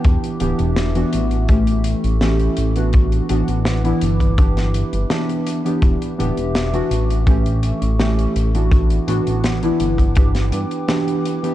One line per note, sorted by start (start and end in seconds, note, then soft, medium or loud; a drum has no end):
0.00 0.36 E3 medium
0.00 0.36 B3 medium
0.00 0.37 D4 medium
0.00 0.37 G4 medium
0.04 0.17 E1 loud
0.04 1.48 E4 medium
0.04 1.48 B4 medium
0.04 2.91 E5 medium
0.04 1.48 D6 medium
0.04 kick loud
0.04 closed hi-hat medium
0.24 closed hi-hat medium
0.40 0.53 D1 medium
0.40 0.90 E3 medium
0.40 0.91 B3 medium
0.40 0.91 D4 medium
0.40 0.91 G4 loud
0.40 closed hi-hat medium
0.59 1.04 E1 medium
0.59 closed hi-hat medium
0.76 snare loud
0.76 closed hi-hat medium
0.95 1.45 E3 medium
0.95 1.45 B3 medium
0.95 1.45 D4 medium
0.95 1.45 F#4 loud
0.95 closed hi-hat soft
1.13 1.95 A1 medium
1.13 closed hi-hat loud
1.31 closed hi-hat medium
1.49 2.17 E3 medium
1.49 2.17 A3 medium
1.49 2.17 C#4 medium
1.49 2.92 E4 medium
1.49 2.18 G4 medium
1.49 2.92 A4 medium
1.49 2.92 C#6 medium
1.49 kick loud
1.49 closed hi-hat medium
1.67 closed hi-hat medium
1.84 closed hi-hat loud
2.04 2.49 A1 medium
2.04 closed hi-hat medium
2.21 2.71 E3 medium
2.21 2.71 A3 medium
2.21 2.72 C#4 medium
2.21 2.72 G4 medium
2.21 snare loud
2.21 closed hi-hat medium
2.39 closed hi-hat soft
2.57 3.21 A1 medium
2.57 closed hi-hat loud
2.75 3.25 E3 medium
2.75 3.25 B3 medium
2.75 3.26 D4 medium
2.75 3.26 F#4 medium
2.75 closed hi-hat medium
2.93 7.23 E4 medium
2.93 5.80 B4 medium
2.93 4.37 F#5 medium
2.93 5.80 D6 medium
2.93 kick loud
2.93 closed hi-hat medium
3.12 closed hi-hat soft
3.29 3.43 A1 medium
3.29 3.80 E3 medium
3.29 3.80 B3 medium
3.29 3.80 D4 medium
3.29 3.80 F#4 loud
3.29 closed hi-hat medium
3.48 3.93 A1 medium
3.48 closed hi-hat medium
3.65 snare loud
3.65 closed hi-hat medium
3.84 4.34 E3 medium
3.84 4.34 B3 medium
3.84 4.34 D4 medium
3.84 4.34 E4 loud
3.84 closed hi-hat soft
4.01 4.84 G1 medium
4.01 closed hi-hat loud
4.20 kick medium
4.20 closed hi-hat soft
4.38 5.06 E3 medium
4.38 5.06 B3 medium
4.38 5.06 D4 medium
4.38 5.07 G4 medium
4.38 8.68 E5 medium
4.38 kick loud
4.38 closed hi-hat medium
4.57 snare soft
4.57 closed hi-hat soft
4.74 closed hi-hat medium
4.93 5.05 G1 medium
4.93 closed hi-hat medium
5.10 5.60 E3 medium
5.10 5.61 B3 medium
5.10 5.61 D4 medium
5.10 5.61 G4 loud
5.10 snare loud
5.10 closed hi-hat medium
5.29 closed hi-hat medium
5.47 closed hi-hat loud
5.65 6.14 E3 medium
5.65 6.15 B3 medium
5.65 6.15 D4 medium
5.65 6.15 G4 medium
5.65 closed hi-hat medium
5.82 5.95 E1 loud
5.82 7.26 B4 medium
5.82 7.26 D6 medium
5.82 kick loud
5.82 closed hi-hat medium
6.02 closed hi-hat medium
6.18 6.32 D1 medium
6.18 6.69 E3 medium
6.18 6.69 B3 medium
6.18 6.69 D4 medium
6.18 6.69 G4 loud
6.18 closed hi-hat medium
6.37 6.82 E1 medium
6.37 closed hi-hat soft
6.55 snare loud
6.55 closed hi-hat medium
6.73 7.23 E3 medium
6.73 7.23 B3 medium
6.73 7.23 D4 medium
6.73 7.23 F#4 loud
6.73 closed hi-hat medium
6.91 7.73 A1 medium
6.91 closed hi-hat loud
7.10 closed hi-hat medium
7.26 7.95 E3 medium
7.26 7.95 A3 medium
7.26 7.95 C#4 medium
7.26 11.54 E4 medium
7.26 7.96 G4 medium
7.26 8.70 A4 medium
7.26 8.70 C#6 medium
7.26 kick loud
7.26 closed hi-hat medium
7.46 closed hi-hat medium
7.63 closed hi-hat medium
7.82 8.27 A1 medium
7.82 closed hi-hat medium
7.99 8.50 E3 medium
7.99 8.50 A3 medium
7.99 8.50 C#4 medium
7.99 8.50 G4 medium
7.99 snare loud
7.99 closed hi-hat medium
8.19 closed hi-hat medium
8.36 8.99 A1 medium
8.36 closed hi-hat loud
8.54 9.04 E3 medium
8.54 9.04 B3 medium
8.54 9.04 D4 medium
8.54 9.04 F#4 medium
8.54 closed hi-hat medium
8.71 11.54 B4 medium
8.71 10.15 F#5 medium
8.71 11.54 D6 medium
8.71 kick loud
8.71 closed hi-hat medium
8.90 closed hi-hat medium
9.07 9.21 A1 medium
9.07 9.58 E3 medium
9.07 9.58 B3 medium
9.07 9.58 D4 medium
9.07 9.59 F#4 loud
9.07 closed hi-hat medium
9.27 9.72 A1 medium
9.27 closed hi-hat medium
9.44 snare loud
9.44 closed hi-hat medium
9.62 10.12 E3 medium
9.62 10.12 B3 medium
9.62 10.12 D4 medium
9.62 10.13 E4 loud
9.62 closed hi-hat soft
9.80 10.52 G1 medium
9.80 closed hi-hat medium
9.98 kick medium
9.98 closed hi-hat soft
10.15 10.84 E3 medium
10.15 10.84 B3 medium
10.15 10.84 D4 medium
10.15 10.85 G4 medium
10.15 11.54 G5 medium
10.15 kick loud
10.15 closed hi-hat medium
10.35 snare soft
10.35 closed hi-hat soft
10.52 10.65 G2 loud
10.52 closed hi-hat medium
10.71 closed hi-hat soft
10.88 11.38 E3 medium
10.88 11.39 B3 medium
10.88 11.39 D4 medium
10.88 11.39 G4 medium
10.88 snare loud
10.88 closed hi-hat medium
11.08 closed hi-hat medium
11.25 closed hi-hat medium
11.43 11.54 E3 medium
11.43 11.54 B3 medium
11.43 11.54 D4 medium
11.43 11.54 G4 medium
11.43 closed hi-hat medium